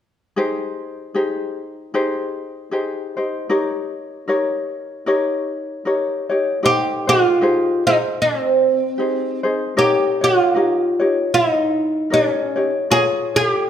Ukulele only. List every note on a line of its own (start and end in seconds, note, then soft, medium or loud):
0.36 1.15 D#4 medium
0.36 1.15 G4 medium
0.36 1.13 G#4 medium
0.36 1.15 C5 medium
1.14 1.94 D#4 medium
1.14 1.94 G4 medium
1.14 1.93 G#4 medium
1.14 1.94 C5 medium
1.94 2.72 D#4 medium
1.94 2.72 G4 medium
1.94 2.70 G#4 medium
1.94 2.72 C5 medium
2.71 3.17 D#4 medium
2.71 3.16 G4 medium
2.71 3.16 G#4 medium
2.71 3.15 C5 medium
3.17 3.49 D#4 soft
3.17 3.49 G4 soft
3.17 3.50 C5 soft
3.49 4.28 D#4 medium
3.49 4.29 G4 medium
3.49 4.26 A#4 medium
3.49 4.28 C#5 medium
4.28 5.07 D#4 medium
4.28 5.07 G4 medium
4.28 5.05 A#4 medium
4.28 5.07 C#5 medium
5.06 5.85 D#4 medium
5.06 5.86 G4 medium
5.06 5.84 A#4 medium
5.06 5.86 C#5 medium
5.85 6.30 D#4 medium
5.85 6.29 G4 medium
5.85 6.30 A#4 medium
5.85 6.28 C#5 medium
6.30 6.62 D#4 soft
6.30 6.61 G4 soft
6.30 6.63 C#5 soft
6.63 7.08 D#4 medium
6.63 7.08 G4 medium
6.63 7.06 C5 medium
7.07 7.40 D#4 soft
7.07 7.41 G#4 soft
7.07 7.41 C5 soft
7.41 7.86 D#4 medium
7.41 7.86 G4 medium
7.41 7.87 G#4 medium
7.41 7.85 C5 medium
7.87 8.99 D#4 soft
7.87 8.98 G#4 soft
7.87 8.98 C5 medium
8.98 9.43 D#4 medium
8.98 9.43 G4 medium
8.98 9.43 G#4 medium
8.98 9.42 C5 medium
9.43 9.76 D#4 soft
9.43 9.77 G#4 soft
9.43 9.77 C5 medium
9.77 10.22 D#4 medium
9.77 10.21 G4 medium
9.77 10.21 A#4 medium
9.77 10.20 C#5 medium
10.21 10.55 D#4 soft
10.21 10.55 G4 soft
10.21 10.55 C#5 soft
10.55 11.00 D#4 medium
10.55 11.00 G4 medium
10.55 10.99 A#4 medium
10.55 10.98 C#5 medium
11.00 12.10 D#4 soft
11.00 12.11 G4 soft
11.00 12.12 C#5 medium
12.10 12.56 D#4 medium
12.10 12.55 G4 medium
12.10 12.55 A#4 medium
12.10 12.55 C#5 medium
12.56 12.90 D#4 soft
12.56 12.90 G4 soft
12.56 12.89 C#5 soft
12.90 13.35 F4 medium
12.90 13.35 G#4 medium
12.90 13.34 A#4 medium
12.90 13.33 C#5 medium
13.34 13.67 F4 soft
13.34 13.68 C#5 soft